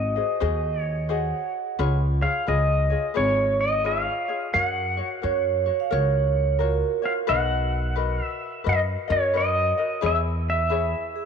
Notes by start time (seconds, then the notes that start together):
Already playing: G#1 F#4 G#4 C5 D#5
0.16 F#4 G#4 C5 D#5
0.40 D#2 F#4 G#4 C5 D#5
0.81 C#5
1.09 F#4 G#4 C5 D#5 F#5
1.79 C#2 F4 G#4 B4 C#5
2.21 F4 G#4 C#5 F5
2.47 C#2 F4 G#4 B4 C#5 D#5
2.90 F4 G#4 C#5
3.14 G#1 F4 G#4 B4 C#5
3.61 D#5
3.84 F4 G#4 B4 C#5 F5
4.28 F4 G#4 C#5
4.53 F#2 F#4 A#4 C#5 F#5
4.97 F#4 C#5
5.22 F#2 F#4 A#4 C#5
5.66 F#4 C#5
5.80 F5
5.91 C#2 F#4 A#4 C#5
6.59 F4 F#4 A#4 C#5
7.02 F4 F#4 C#5 F5
7.27 B1 F#4 A#4 B4 D#5 F#5
7.96 F#4 A#4 B4 D#5
8.24 E5
8.64 F#2 F#4 A#4 B4 D#5
8.69 D#5
9.08 F#2 F#4 A#4 D#5
9.12 C#5
9.34 F#4 A#4 B4 D#5
9.78 F#4 A#4 D#5
10.01 E2 E4 G#4 B4 C#5
10.06 E5
10.50 E5
10.69 E4 G#4 B4 C#5
11.16 G#4